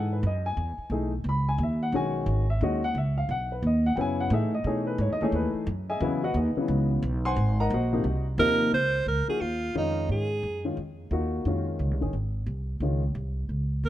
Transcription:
Already playing: upright bass G#2, upright piano E3 D#4 G#4 A4 F#5
0.13 upright piano B4
0.23 upright bass F#2, upright piano D#5
0.46 upright piano G#5
0.57 upright bass E2
0.78 muted upright bass stroke
0.90 upright bass B1, upright piano E3 A3 D#4 G#4
1.24 upright bass C#2
1.29 upright piano B5
1.49 upright piano G#5
1.58 upright bass D#2
1.63 upright piano E5
1.83 upright piano F#5
1.92 upright bass B1, upright piano D#3 G#3 C#4 F#4 G#5
2.26 upright bass G#1
2.50 upright piano E5
2.61 upright bass D#2, upright piano D#3 G#3 C#4 F#4 D#5
2.84 upright piano F#5
2.95 upright bass C#2, upright piano E5
3.18 upright piano F5
3.29 upright bass B1, upright piano F#5
3.52 upright piano B4
3.62 upright bass D#2
3.67 upright piano D#5
3.86 upright piano F#5
3.96 upright bass F#2, upright piano C#3 F#3 B3 E4 G5
4.01 upright piano G#5
4.20 upright piano F#5
4.30 upright bass A2, upright piano E3 A3 D#4 G#4 E5
4.55 upright piano D#5
4.64 upright bass B2, upright piano E3 A3 D#4 G#4 C#5
4.87 upright piano B4
4.98 upright bass G#2, upright piano C#5
5.09 upright bass E2, upright piano D#5
5.21 upright bass D#2, upright piano E3 A3 D#4 G#4 C#5
5.32 upright bass D#2, upright piano B4
5.54 muted upright bass stroke
5.67 upright bass F#2
5.89 upright piano G#4 D#5 E5 G#5
6.00 upright bass E2, upright piano C#3 F#3 B3 E4
6.24 upright piano F#4 B4 D#5 F#5
6.34 upright bass D#2, upright piano D#4 G#4 B4 D#5
6.56 upright piano C#3 E3 F#3 B3, muted upright bass stroke
6.68 upright bass C#2
7.02 upright bass B1
7.25 upright piano C5 F#5 G#5 C6
7.36 upright bass G#1
7.60 upright piano A#4 D#5 F#5 A#5
7.70 upright bass A#1, upright piano F#4 C5 D#5 F#5
7.92 upright piano C3 F3 A#3 D#4
8.04 upright bass C2
8.38 upright bass D#2, upright piano C3 F3 A#3 D#4, alto saxophone A#4
8.72 upright bass C#2, alto saxophone C5
9.06 upright bass C#2, alto saxophone A#4
9.28 upright piano F3 A#3 D#4 F#4, alto saxophone G#4, muted upright bass stroke
9.41 upright bass D#2, alto saxophone F4
9.75 upright bass F2, upright piano D#3 G#3 C#4 F4, alto saxophone D#4
10.09 upright bass G#2, alto saxophone G#4
10.43 upright bass F#2
10.65 upright piano D#3 G#3 C#4 F4
10.77 upright bass F2
11.11 upright bass D#2, upright piano A#3 D#4 F4 F#4
11.45 upright bass F2, upright piano D#3 G#3 C#4 F4
11.79 upright bass C#2
11.91 upright bass C2
12.01 upright bass G#1, upright piano D#3 G#3 C#4 G#4
12.13 upright bass G#1
12.46 upright bass C2
12.80 upright bass C#2, upright piano D#3 G#3 C#4 F4
13.15 upright bass C2
13.49 upright bass C#2
13.84 upright bass D#2, alto saxophone A#4

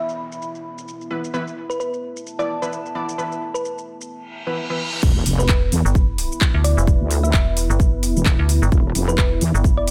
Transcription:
Already playing: synth stab E3 B3 E4 B4, ambient pad B3 E4 B4 E5 B5, downlifter
0.09 shaker
0.32 shaker
0.42 shaker
0.55 shaker
0.78 shaker
0.88 shaker
1.01 shaker
1.10 synth stab E3 B3 E4 B4
1.24 shaker
1.34 synth stab E3 B3 E4 B4, ambient pad A4, shaker
1.47 shaker
1.70 synth pluck B4, shaker
1.80 synth pluck B4, shaker
1.94 shaker
2.08 ambient pad A5
2.17 shaker
2.27 shaker
2.39 synth stab E3 B3 E4 D5, synth pluck D5, shaker
2.62 synth stab E3 B3 E4 B4, shaker
2.73 shaker
2.86 shaker
2.95 synth stab E3 B3 E4 D5
3.09 shaker
3.18 synth stab E3 B3 E4 B4, shaker
3.32 shaker
3.54 synth pluck B4, shaker
3.65 shaker
3.78 shaker
4.01 shaker
4.10 reverse cymbal
4.47 synth stab E3 B3 E4 B4
4.70 synth stab E3 B3 E4 B4
5.03 wobble bass E1, ambient pad B3 E4 B4, kick, crash, sub drop, shaker
5.26 wobble bass F1, open hi-hat, shaker
5.39 ambient pad E4, synth pluck B4, shaker
5.43 ambient pad B5
5.49 fm bass E1, synth pluck B4, kick, clap, shaker
5.72 wobble bass E2, open hi-hat, shaker
5.85 fm bass G1, shaker
5.95 kick, shaker
6.08 ambient pad E5
6.18 open hi-hat, shaker
6.32 shaker
6.41 kick, clap, shaker
6.54 fm bass D2
6.64 synth pluck D5, open hi-hat, shaker
6.77 fm bass F1, shaker
6.87 kick, shaker
7.00 wobble bass D2
7.11 open hi-hat, shaker
7.23 synth pluck E5, shaker
7.34 fm bass E1, synth pluck E5, kick, clap, shaker
7.57 open hi-hat, shaker
7.70 fm bass G1, shaker
7.80 kick, shaker
8.03 open hi-hat, shaker
8.16 wobble bass E1, shaker
8.26 kick, clap, shaker
8.39 fm bass D2
8.49 open hi-hat, shaker
8.62 fm bass G1, shaker
8.72 wobble bass E1, ambient pad D5, kick, shaker
8.95 wobble bass F1, open hi-hat, shaker
9.08 synth pluck B4, shaker
9.18 fm bass E1, synth pluck B4, kick, clap, shaker
9.41 wobble bass E2, open hi-hat, shaker
9.54 fm bass G1, shaker
9.64 kick, shaker
9.77 synth pluck D5
9.87 open hi-hat

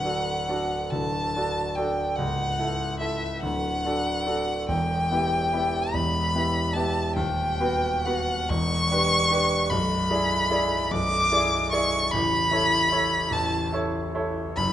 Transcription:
Already playing: grand piano D1 D2, violin F#5
0.04 grand piano D4 F#4 A4
0.49 grand piano D4 F#4 A4
0.90 grand piano D1 D2, violin A5
1.36 grand piano D4 F#4 A4
1.75 grand piano D4 F#4 A4, violin G5
2.16 grand piano C#1 C#2, violin F#5
2.59 grand piano E4 A4
2.99 grand piano E4 A4, violin E5
3.42 grand piano D1 D2, violin F#5
3.85 grand piano D4 F#4 A4
4.26 grand piano D4 F#4 A4
4.68 grand piano E1 E2, violin G5
5.11 grand piano B3 E4 G4
5.53 grand piano B3 E4 G4
5.92 grand piano E1 E2, violin B5
6.35 grand piano B3 E4 G4
6.73 grand piano B3 E4 G4, violin A5
7.15 grand piano D#1 D#2, violin G5
7.60 grand piano B3 F#4 B4
8.05 grand piano B3 F#4 B4, violin F#5
8.50 grand piano E1 E2, violin C#6
8.91 grand piano D4 G4 B4
9.31 grand piano D4 G4 B4
9.70 grand piano B0 B1, violin B5
10.10 grand piano E4 G#4 D5
10.50 grand piano E4 G#4 D5
10.91 grand piano B0 B1, violin D6
11.32 grand piano E4 G#4 D5
11.72 grand piano E4 G#4 D5, violin C#6
12.12 grand piano A0 A1, violin B5
12.51 grand piano E4 A4 C#5
12.91 grand piano E4 A4 C#5
13.31 grand piano A0 A1, violin A5
13.73 grand piano E4 A4 C#5
14.15 grand piano E4 A4 C#5
14.56 grand piano F#1 F#2, violin B5

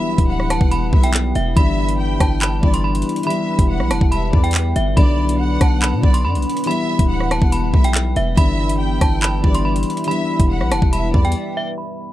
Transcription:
Already playing: grand piano E3 G3 B3 E4, ambient pad G3 B3 E4 B4, violin section E5, synth bell B5
0.18 808-style bass D1, kick, closed hi-hat
0.29 violin section F#5
0.40 cross-stick
0.50 synth bell A5, cross-stick, closed hi-hat
0.61 808-style bass E1, kick
0.71 synth bell B5, closed hi-hat
0.82 808-style bass D1
0.93 808-style bass B1, violin section E5, kick
1.03 synth bell G5, closed hi-hat
1.14 clap
1.35 808-style bass E1, synth bell E5, closed hi-hat
1.55 808-style bass G1, grand piano E3 G3 B3 D4, ambient pad G3 D4 E4 B4, violin section E5, synth bell B5, kick, closed hi-hat
1.89 closed hi-hat
1.99 violin section G5
2.20 808-style bass G1, synth bell A5, kick, cross-stick, closed hi-hat
2.41 synth bell B5, clap, closed hi-hat
2.62 808-style bass G1, grand piano E3 G3 B3 D4, violin section D5, kick
2.74 synth bell C6, closed hi-hat
2.84 synth bell B5
2.95 closed hi-hat
3.02 closed hi-hat
3.09 closed hi-hat
3.16 closed hi-hat
3.23 grand piano E3 G3, ambient pad B3 E4, violin section E5, synth bell B5, closed hi-hat
3.27 grand piano B3 E4, closed hi-hat
3.59 808-style bass E1, kick, closed hi-hat
3.69 violin section F#5
3.80 808-style bass B1, cross-stick
3.91 808-style bass E1, synth bell A5, cross-stick, closed hi-hat
4.01 808-style bass E1, kick
4.12 violin section E5, synth bell B5, closed hi-hat
4.33 808-style bass E2, violin section D5, kick
4.44 synth bell G5, closed hi-hat
4.51 clap, closed hi-hat
4.58 closed hi-hat
4.76 808-style bass G1, synth bell E5, closed hi-hat
4.95 808-style bass B1, grand piano D3 F#3 B3 D4, ambient pad F#3 D4, violin section D5, synth bell B5, kick, closed hi-hat
5.29 closed hi-hat
5.40 violin section F#5
5.61 808-style bass B1, synth bell A5, kick, cross-stick, closed hi-hat
5.82 synth bell B5, clap, closed hi-hat
5.93 808-style bass B2
6.03 808-style bass B1, violin section D5, kick
6.14 synth bell C6, closed hi-hat
6.25 808-style bass F#2, synth bell B5
6.35 808-style bass B1, closed hi-hat
6.42 closed hi-hat
6.50 closed hi-hat
6.57 closed hi-hat
6.64 grand piano E3 G3 B3, ambient pad G3 E4, violin section E5, synth bell B5, closed hi-hat
6.69 grand piano E4, closed hi-hat
6.99 808-style bass D1, kick, closed hi-hat
7.10 violin section F#5
7.20 cross-stick
7.31 synth bell A5, cross-stick, closed hi-hat
7.42 808-style bass E1, kick
7.52 synth bell B5, closed hi-hat
7.63 808-style bass D1
7.74 808-style bass B1, violin section E5, kick
7.84 synth bell G5, closed hi-hat
7.95 clap
8.16 808-style bass E1, synth bell E5, closed hi-hat
8.36 808-style bass G1, grand piano E3 G3 B3 D4, ambient pad G3 D4 B4, violin section E5, synth bell B5, kick, closed hi-hat
8.69 closed hi-hat
8.80 violin section G5
9.01 808-style bass G1, synth bell A5, kick, cross-stick, closed hi-hat
9.22 synth bell B5, clap, closed hi-hat
9.43 808-style bass G1, grand piano E3 G3 B3 D4, violin section D5, kick
9.54 synth bell C6, closed hi-hat
9.65 synth bell B5
9.76 closed hi-hat
9.83 closed hi-hat
9.90 closed hi-hat
9.97 closed hi-hat
10.04 grand piano E3 G3, ambient pad B3 B4, violin section E5, synth bell B5, closed hi-hat
10.08 grand piano B3 E4, closed hi-hat
10.40 808-style bass E1, kick, closed hi-hat
10.50 violin section F#5
10.61 808-style bass B1, cross-stick
10.72 808-style bass E1, synth bell A5, cross-stick, closed hi-hat
10.82 808-style bass E1, kick
10.93 violin section E5, synth bell B5, closed hi-hat
11.14 808-style bass E2, violin section D5, kick
11.25 synth bell G5, closed hi-hat
11.32 closed hi-hat
11.57 synth bell E5
11.78 ambient pad F#3 B3 D4 B4, synth bell B5

